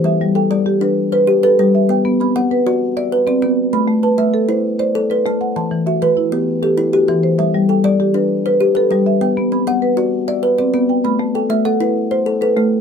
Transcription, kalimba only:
<<
  \new Staff \with { instrumentName = "Kalimba" } { \time 12/8 \key a \dorian \tempo 4. = 131 r4 a'4. r4 c''4 b'4. | r4 c'8 fis''4. r8 e''4 d''4. | r4 b'8 e''4. r8 d''4 c''4. | r4 fis'8 b'4. r8 a'4 g'4. |
r4 a'8 d''4. r8 c''4 b'4. | r4 c'8 fis''4. r8 e''4 d''4. | r4 a'8 e''8 fis''4. c''4 a'4. | }
  \new Staff \with { instrumentName = "Kalimba" } { \time 12/8 \key a \dorian g4 r8 g4 d'4 r8 g'4 g4 | b4 r8 b4 fis'4 r8 b'4 b4 | a4 r8 a4 e'4 r8 a'4 a4 | e4 r8 e4 b4 r8 e'4 e4 |
g4 r8 g4 d'4 r8 g'4 g4 | b4 r8 b4 fis'4 r8 b'4 b4 | a4 r8 a4 e'4 r8 a'4 a4 | }
>>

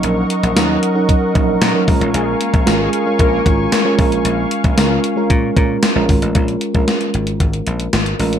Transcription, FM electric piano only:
\new Staff \with { instrumentName = "FM electric piano" } { \time 4/4 \key bes \minor \tempo 4 = 114 << { r2 r8 ees''8 bes''4 | r1 | r1 | r1 | } \\ { <ges des' ees' bes'>8. r16 <ges des' ees' bes'>8 r16 <ges des' ees' bes'>8 r16 <ges des' ees' bes'>8 r16 <ges des' ees' bes'>16 <aes des' f' bes'>8~ | <aes des' f' bes'>8. r16 <aes des' f' bes'>8 r16 <aes des' f' bes'>8 r16 <aes des' f' bes'>8 r16 <aes des' f' bes'>16 <aes des' f' bes'>8~ | <aes des' f' bes'>8. r16 <aes des' f' bes'>8 r16 <aes des' f' bes'>8 r16 <aes des' f' bes'>8 r16 <aes des' f' bes'>8 r16 | <aes des' f' bes'>8 r16 <aes des' f' bes'>4. r4 r16 <aes des' f' bes'>8 | } >> }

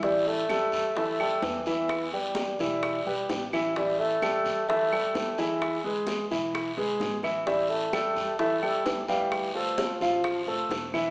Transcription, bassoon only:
\new Staff \with { instrumentName = "Bassoon" } { \clef bass \time 4/4 \key e \phrygian \tempo 4 = 130 g8 a4. a4 e8 e8~ | e8 g2. r8 | g8 a4. a4. gis8~ | gis8 r2. r8 |
g8 a4. a4 e8 e8~ | e8 f2. r8 | }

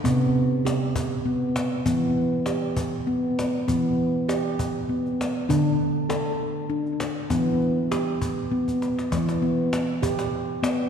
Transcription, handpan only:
\new Staff \with { instrumentName = "Handpan" } { \time 3/4 \key e \minor \tempo 4 = 99 << { b4 g'4 b4 | b4 g'4 b4 | b4 g'4 b4 | d'4 a'4 d'4 |
b4 g'4 b4 | r8 b4 g'4 b8 | } \\ { c2 r4 | e2 r4 | e2 r4 | d2 r4 |
e2 r4 | e2 r4 | } >> }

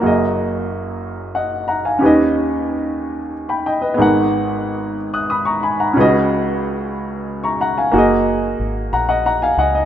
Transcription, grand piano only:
\new Staff \with { instrumentName = "Grand piano" } { \time 6/8 \key fis \major \tempo 4. = 61 << { r2 <dis'' fis''>8 <fis'' ais''>16 <eis'' gis''>16~ | <eis'' gis''>16 r2 <g'' b''>16 <dis'' g''>16 <b' dis''>16~ | <b' dis''>16 r4. <dis''' fis'''>16 <b'' dis'''>16 <ais'' cis'''>16 <gis'' b''>16 <fis'' ais''>16~ | <fis'' ais''>16 r2 <ais'' cis'''>16 <fis'' ais''>16 <eis'' gis''>16~ |
<eis'' gis''>16 r4 r16 <fis'' ais''>16 <dis'' fis''>16 <fis'' ais''>16 <eis'' gis''>16 <dis'' fis''>16 dis''16 | } \\ { <fis,, fis, ais fis' gis' dis''>2. | <dis, dis cis' g' b' dis''>2. | <gis,, gis, b gis' ais' fis''>2. | <cis, cis cis' eis' fis' b' dis''>2. |
<ais fis' gis' dis''>2. | } >> }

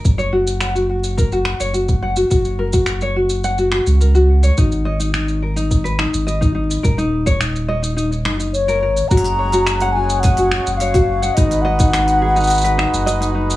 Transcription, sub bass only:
\new Staff \with { instrumentName = "Sub bass" } { \clef bass \time 4/4 \key fis \major \tempo 4 = 106 fis,,2~ fis,,8. fis,,4~ fis,,16 | fis,,2~ fis,,8. cis,4~ cis,16 | gis,,2~ gis,,8. gis,,4~ gis,,16 | dis,,2~ dis,,8 fis,,4 gis,,16 r16 |
fis,,2~ fis,,8. fis,,4~ fis,,16 | gis,,2~ gis,,8. fis,,4~ fis,,16 | }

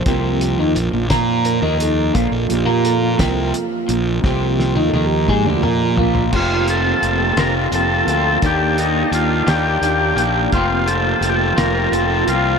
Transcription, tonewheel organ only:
<<
  \new Staff \with { instrumentName = "Tonewheel organ" } { \time 6/8 \key f \mixolydian \tempo 4. = 57 bes'8 r4. bes'8 a'8~ | a'8 g'8 a'8 bes'8 r4 | r8 f'8 a'16 g'8. f'4 | r2. |
r2. | r2. | }
  \new Staff \with { instrumentName = "Tonewheel organ" } { \time 6/8 \key f \mixolydian <f bes f'>4. r4. | <f bes f'>2. | <f bes f'>2. | r2. |
r2. | r2. | }
>>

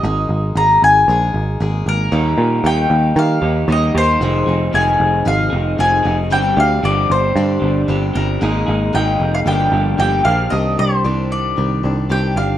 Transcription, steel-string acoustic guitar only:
\new Staff \with { instrumentName = "Steel-string acoustic guitar" } { \time 4/4 \key c \minor \tempo 4 = 114 <aes bes ees' aes'>4 <aes bes ees' aes'>4 <aes bes ees' aes'>4 <aes bes ees' aes'>8 <bes ees' aes'>8 | <ees bes ees' g'>4 <ees bes ees' g'>4 <ees bes ees' g'>4 <ees bes ees' g'>4 | <f, c ees aes c' aes'>8 <ees aes c' aes'>8 <ees aes c' aes'>4 <f, c ees aes c' aes'>4 <ees aes c' aes'>8 <ees aes c' aes'>8 | <g, d g c' d' g'>8 <g c' d' g'>8 <g c' d' g'>4 <g, d g c' d' g'>4 <g c' d' g'>4 |
<aes bes ees' aes'>4 <aes bes ees' aes'>4 <g, d f bes d' g'>4 <f bes d' g'>8 <f bes d' g'>8 | <c ees c' d' g'>8 <c' d' g'>8 <c ees c' d' g'>4 <ees c' d' g'>8 <c' d' g'>8 <c ees c' d' g'>8 <c' d' g'>8 | }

